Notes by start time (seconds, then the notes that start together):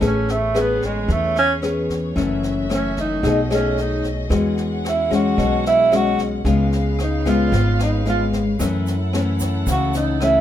0.01 A1 A3 B3 C#4 G#4 B4 C#5, kick, cross-stick, snare
0.06 C#4
0.28 A3, snare
0.54 C#4 G#4 B4, cross-stick, snare
0.59 B3
0.82 G#3, kick, snare
1.08 E2 E3, kick, snare
1.12 A3
1.36 C#4, snare
1.62 C#4 G#4 B4, cross-stick, snare
1.89 kick, snare
2.16 F#1 F#2 E3 A3 C#4 F#4 E5, kick, snare
2.43 snare
2.69 E3 A3 C#4, cross-stick, snare
2.74 C#4
2.97 D#4, kick, snare
3.23 B1 B2 A3 D#4 G#4 C#5 D#5, kick, snare
3.50 A3 C#4 D#4 G#4, cross-stick, snare
3.77 snare
3.81 D#4
4.04 kick, snare
4.30 E2 E3 G#3 C#4 F#4 F#5, kick, cross-stick, snare
4.57 snare
4.85 E4, cross-stick, snare
5.10 G#3 C#4 F#4, kick, snare
5.37 B1 B2, kick, snare
5.65 E4, snare
5.91 G#3 C#4 F#4, cross-stick, snare
5.96 F#4
6.18 kick, snare
6.44 C#2 C#3 G#3 B3 C#4 F4 B4 F5, kick, snare
6.72 snare
6.98 cross-stick, snare
7.03 D#4
7.25 G#3 B3 F4, kick, snare
7.52 G#1 G#2, kick, snare
7.79 D#4, cross-stick, snare
8.06 G#3 B3 F4, snare
8.33 kick, snare
8.59 F#2 E3 A3 C#4 E4 A4 F#5, kick, cross-stick, snare, shaker
8.87 snare, shaker
9.13 E3 A3 C#4, cross-stick, snare
9.40 kick, snare, shaker
9.67 C#2 C#3, kick, snare, shaker
9.71 F#4
9.94 D#4, snare, shaker
10.20 E3 A3 C#4 E4, cross-stick, snare